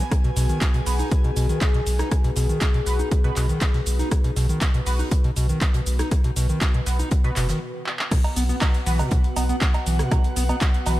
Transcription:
Already playing: B3 F#4 B4 G#5
0.11 G#4, kick, cross-stick, closed hi-hat, shaker
0.24 B2, closed hi-hat
0.36 B1 B2, snare, closed hi-hat, open hi-hat, shaker
0.49 D#3, closed hi-hat, shaker
0.61 kick, snare, clap, closed hi-hat, shaker
0.74 B2, closed hi-hat
0.86 B1 B3 F#4 B4, open hi-hat, shaker
0.99 D#4, closed hi-hat, shaker
1.11 kick, closed hi-hat, shaker
1.24 B2, closed hi-hat
1.36 B1 B2, closed hi-hat, open hi-hat, shaker
1.49 D#3, closed hi-hat, shaker
1.61 kick, snare, clap, closed hi-hat, shaker
1.74 B2, snare, closed hi-hat
1.86 B1, closed hi-hat, open hi-hat, shaker
1.99 D#4, cross-stick, snare, closed hi-hat, shaker
2.11 kick, cross-stick, closed hi-hat, shaker
2.24 B2, closed hi-hat
2.36 B1 B2, snare, closed hi-hat, open hi-hat, shaker
2.49 D#3, closed hi-hat, shaker
2.61 kick, snare, clap, closed hi-hat, shaker
2.74 B2, closed hi-hat
2.86 B1 B3 F#4 B4, snare, closed hi-hat, open hi-hat, shaker
2.99 D#4, closed hi-hat, shaker
3.11 kick, closed hi-hat, shaker
3.24 B2 B3 F#4 B4, closed hi-hat
3.36 B1 B2, clap, closed hi-hat, open hi-hat, shaker
3.49 D#3, closed hi-hat, shaker
3.61 kick, snare, clap, closed hi-hat, shaker
3.74 B2, snare, closed hi-hat
3.86 B1, closed hi-hat, open hi-hat, shaker
3.99 D#4, snare, closed hi-hat, shaker
4.11 kick, cross-stick, closed hi-hat, shaker
4.24 B2, closed hi-hat
4.36 B1 B2, snare, closed hi-hat, open hi-hat, shaker
4.49 D#3, closed hi-hat, shaker
4.61 kick, snare, clap, closed hi-hat, shaker
4.74 B2, closed hi-hat
4.86 B1 B3 F#4 B4, open hi-hat, shaker
4.99 D#4, closed hi-hat, shaker
5.11 kick, closed hi-hat, shaker
5.24 B2, closed hi-hat
5.36 B1 B2, closed hi-hat, open hi-hat, shaker
5.49 D#3, closed hi-hat, shaker
5.61 kick, snare, clap, closed hi-hat, shaker
5.74 B2, closed hi-hat
5.86 B1, open hi-hat, shaker
5.99 D#4, cross-stick, snare, closed hi-hat, shaker
6.11 kick, cross-stick, closed hi-hat, shaker
6.24 B2, closed hi-hat
6.36 B1 B2, snare, closed hi-hat, open hi-hat, shaker
6.49 D#3, closed hi-hat, shaker
6.61 kick, snare, clap, closed hi-hat, shaker
6.74 B2, closed hi-hat
6.86 B1 B3 F#4 B4, snare, closed hi-hat, open hi-hat, shaker
6.99 D#4, closed hi-hat, shaker
7.11 kick, closed hi-hat, shaker
7.24 B2 B3 F#4 B4, closed hi-hat
7.36 F#1 B2, snare, clap, closed hi-hat, open hi-hat, shaker
7.49 D#3, snare, closed hi-hat, shaker
7.86 clap
7.99 clap
8.11 B2 B3 F#4 B4, kick, cross-stick, closed hi-hat, crash, shaker
8.23 F#5, closed hi-hat, cowbell
8.30 B4
8.36 B1 B3 F#4, snare, closed hi-hat, open hi-hat, shaker
8.49 B3, closed hi-hat, shaker
8.61 kick, snare, clap, closed hi-hat, cowbell, shaker
8.74 closed hi-hat
8.86 B1 E3 B3 F#4 B4, open hi-hat, shaker
8.99 B2, closed hi-hat, cowbell, shaker
9.11 B2, kick, closed hi-hat, shaker
9.24 closed hi-hat
9.36 B1 B3, closed hi-hat, open hi-hat, cowbell, shaker
9.49 B3, closed hi-hat, shaker
9.61 kick, snare, clap, closed hi-hat, shaker
9.74 snare, closed hi-hat, cowbell
9.86 B1 E3, closed hi-hat, open hi-hat, shaker
9.99 B2, cross-stick, snare, closed hi-hat, shaker
10.11 B2, kick, cross-stick, closed hi-hat, cowbell, shaker
10.24 closed hi-hat
10.36 B1 B3, snare, closed hi-hat, open hi-hat, shaker
10.49 B3, closed hi-hat, cowbell, shaker
10.61 kick, snare, clap, closed hi-hat, shaker
10.74 closed hi-hat
10.86 B1 E3 B3 F#4 B4, snare, closed hi-hat, open hi-hat, cowbell, shaker

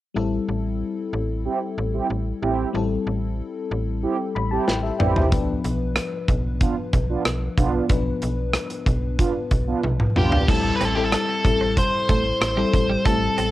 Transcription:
0.14 A1 G3 C4 E4 A4
0.49 A1
1.13 A1
1.45 C4 E4 G4
1.78 A1
1.94 C4 E4 G4
2.10 A1
2.42 A1 C4 E4 G4
2.73 A1 G3 C4 E4 A4
3.07 A1
3.71 A1
4.03 C4 E4 G4
4.35 A1 B5
4.51 C4 E4 G4 A5
4.68 A1 E4 C5 G5, snare
4.83 G4 E5
4.99 A1 C4 E4 G4 B4 D5 G5, mid tom
5.15 G4 E5, floor tom
5.31 B1 F3 B3 D4 B4, kick, closed hi-hat
5.64 B1, closed hi-hat
5.96 cross-stick, closed hi-hat
6.28 B1, kick, closed hi-hat
6.61 B3 D4 F4, kick, closed hi-hat
6.93 B1, kick, closed hi-hat
7.09 B3 D4 F4
7.25 B1, cross-stick, closed hi-hat
7.58 B1 B3 D4 F4, kick, closed hi-hat
7.89 B1 F3 B3 D4 B4, kick, closed hi-hat
8.22 B1, closed hi-hat
8.54 cross-stick, closed hi-hat
8.70 closed hi-hat
8.86 B1, kick, closed hi-hat
9.18 B3 D4 F4, kick, closed hi-hat
9.51 B1, kick, closed hi-hat
9.67 B3 D4 F4
9.83 B1, high tom
10.00 mid tom
10.15 B1 F3 B3 D4 F4 G4 B4, mid tom
10.32 floor tom
10.47 A1 G3 A3 C4 E4 A4, kick, crash
10.76 B4
10.80 A1 C4, closed hi-hat
10.85 A4
10.95 G3 C4 E4 G4 A4, muted clean electric guitar stroke
11.04 A4
11.12 D4 A4, cross-stick, closed hi-hat
11.29 muted clean electric guitar stroke
11.45 A1 G3 C4 E4 A4, kick, closed hi-hat
11.61 C4
11.77 C5, kick, closed hi-hat
12.09 A1 A3, kick, closed hi-hat
12.41 A1 C5, cross-stick, closed hi-hat
12.57 G3 C4 E4 A4
12.74 A1, muted clean electric guitar stroke, kick, closed hi-hat
12.90 G3
13.05 A1 G3 A3 C4 E4 A4, kick, closed hi-hat
13.38 A1 C4, closed hi-hat

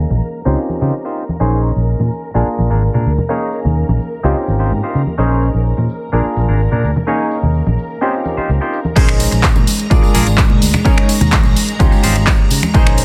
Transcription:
Already playing: A#3 C#4 D#4 G#4 A#4 A#5
0.10 A#1, muted clean electric guitar stroke, tambourine, high conga
0.22 tambourine
0.35 tambourine
0.45 C#2 C4 C#4 D#4 F4 G4 C5, tambourine
0.59 tambourine
0.69 muted clean electric guitar stroke, tambourine, high conga
0.81 C#3 D#4 F4 G4 C5, tambourine
0.94 tambourine
1.05 D#4 F4 G4 C5
1.16 tambourine
1.28 tambourine, high conga
1.40 A#1 C#4 D#4 G#4 A#4 C5 A#5 C6, tambourine
1.52 tambourine
1.64 tambourine
1.76 A#1, tambourine
1.88 tambourine
1.99 A#2, muted clean electric guitar stroke, tambourine, high conga
2.12 tambourine
2.24 tambourine
2.34 A#1 A#3 D4 F4 G#4 A#4, tambourine
2.48 tambourine
2.58 A#1, muted clean electric guitar stroke, tambourine, high conga
2.70 G#1 D4 G#4 A#4, tambourine
2.83 tambourine
2.94 A#2 D4 G#4 A#4, low conga
3.06 D2, tambourine
3.18 tambourine, high conga, low conga
3.29 A#3 C#4 D#4 G#4 A#4 C#5, tambourine
3.41 tambourine
3.53 tambourine
3.65 D#2, tambourine, low conga
3.77 tambourine
3.89 A#1, muted clean electric guitar stroke, tambourine, high conga
4.00 tambourine
4.13 tambourine
4.23 C#2 C4 C#4 D#4 F4 G4 C5, tambourine
4.36 tambourine
4.47 G#1, muted clean electric guitar stroke, tambourine, high conga
4.59 D#4 F4 G4 C5, tambourine
4.71 G#2, tambourine
4.83 D#4 F4 G4 C5
4.95 C#3, tambourine
5.07 tambourine, high conga
5.18 A#1 C#4 D#4 G#4 A#4 C5, tambourine
5.31 tambourine
5.43 tambourine
5.54 A#1, tambourine
5.66 tambourine
5.77 A#2, muted clean electric guitar stroke, tambourine, high conga
5.90 tambourine
6.02 tambourine
6.12 A#1 A#3 D4 F4 G#4 A#4, tambourine
6.25 tambourine
6.36 A#1, muted clean electric guitar stroke, tambourine, high conga
6.49 G#1 D4 G#4 A#4, tambourine
6.60 tambourine
6.72 A#2 D4 G#4 A#4, low conga
6.84 D2, tambourine
6.96 tambourine, high conga, low conga
7.07 A#3 C#4 D#4 G#4 A#4 C#5, tambourine
7.19 tambourine
7.31 tambourine
7.43 D#2, tambourine, low conga
7.54 tambourine
7.66 A#1, muted clean electric guitar stroke, tambourine, high conga
7.79 tambourine
7.90 tambourine
8.01 C4 C#4 D#4 F4 G4 C5, tambourine
8.14 tambourine
8.25 muted clean electric guitar stroke, tambourine, high conga
8.37 D#4 F4 G4 C5, muted fingered electric bass stroke, tambourine
8.49 C#2, tambourine
8.61 D#4 F4 G4 C5, tambourine
8.73 tambourine
8.85 tambourine, high conga
8.96 A#1 G#3 C#4 D#4 G#4 A#4 C5 A#5, kick, closed hi-hat, crash, tambourine
9.09 finger snap, closed hi-hat, tambourine
9.20 muted clean electric guitar stroke, open hi-hat, tambourine
9.31 A#1, muted clean electric guitar stroke, closed hi-hat, tambourine
9.43 kick, clap, closed hi-hat, tambourine
9.56 A#2, muted clean electric guitar stroke, tambourine, high conga
9.67 open hi-hat, tambourine
9.79 closed hi-hat, tambourine
9.90 A#1 D4 F4 G#4 A#4 D5, kick, closed hi-hat, tambourine
10.03 muted clean electric guitar stroke, tambourine
10.14 A#1 D4 F4 G#4 A#4, open hi-hat, tambourine, high conga
10.27 G#1, closed hi-hat, tambourine
10.38 muted clean electric guitar stroke, kick, clap, closed hi-hat, tambourine
10.50 A#2, muted clean electric guitar stroke, low conga
10.62 D2, open hi-hat, tambourine
10.74 finger snap, tambourine, high conga, low conga
10.85 C#4 D#4 G#4 A#4 C#5, kick, closed hi-hat, tambourine
10.98 finger snap, closed hi-hat
11.09 muted clean electric guitar stroke, open hi-hat, tambourine
11.21 D#2, muted clean electric guitar stroke, closed hi-hat, tambourine, low conga
11.31 kick, clap, closed hi-hat, tambourine
11.44 A#1, muted clean electric guitar stroke, tambourine, high conga
11.56 open hi-hat, tambourine
11.68 closed hi-hat, tambourine
11.79 C#2 C#4 D#4 F4 G4 C6, kick, closed hi-hat, tambourine
11.92 muted clean electric guitar stroke, tambourine
12.03 G#1 D#4 F4 G4 C5, open hi-hat, tambourine, high conga
12.15 closed hi-hat, tambourine
12.27 G#2, muted clean electric guitar stroke, kick, clap, closed hi-hat, tambourine
12.39 muted clean electric guitar stroke
12.50 C#3, open hi-hat, tambourine
12.63 finger snap, closed hi-hat, tambourine, high conga
12.74 A#1 C#4 D#4 G#4 A#4 C5, kick, closed hi-hat, tambourine
12.86 finger snap, closed hi-hat, tambourine
12.98 muted clean electric guitar stroke, open hi-hat, tambourine

